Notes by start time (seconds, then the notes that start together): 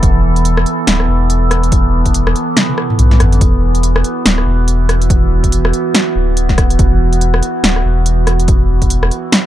Already playing: E3 B3 A4
0.03 E1, kick, closed hi-hat
0.36 closed hi-hat
0.45 closed hi-hat
0.57 cross-stick
0.66 closed hi-hat
0.87 D1, snare, closed hi-hat
1.00 cross-stick
1.09 E1
1.30 closed hi-hat
1.51 cross-stick, closed hi-hat
1.63 closed hi-hat
1.72 E1, kick, closed hi-hat
2.06 kick, closed hi-hat
2.14 closed hi-hat
2.27 cross-stick
2.36 closed hi-hat
2.57 snare, closed hi-hat, high tom
2.69 high tom
2.78 cross-stick
2.90 mid tom
2.99 B1, closed hi-hat, mid tom
3.11 snare, mid tom
3.20 G1, cross-stick, closed hi-hat, mid tom
3.32 closed hi-hat, mid tom
3.41 E1 F#4, kick, closed hi-hat
3.75 closed hi-hat
3.83 closed hi-hat
3.96 cross-stick
4.04 closed hi-hat
4.26 D1, snare, closed hi-hat
4.38 cross-stick
4.47 E1
4.68 closed hi-hat
4.89 cross-stick, closed hi-hat
5.02 closed hi-hat
5.10 E1, kick, closed hi-hat
5.44 kick, closed hi-hat
5.52 closed hi-hat
5.65 cross-stick
5.73 closed hi-hat
5.95 snare, closed hi-hat
6.16 D1
6.37 closed hi-hat
6.49 kick, snare
6.58 kick, cross-stick, closed hi-hat
6.70 closed hi-hat
6.79 E1, kick, closed hi-hat
7.13 closed hi-hat
7.21 closed hi-hat
7.34 cross-stick
7.43 closed hi-hat
7.63 D1, snare, closed hi-hat
7.76 cross-stick
7.85 E1
8.06 closed hi-hat
8.27 cross-stick, closed hi-hat
8.40 closed hi-hat
8.48 E1, kick, closed hi-hat
8.82 kick, closed hi-hat
8.90 closed hi-hat
9.03 cross-stick
9.11 closed hi-hat
9.32 snare, closed hi-hat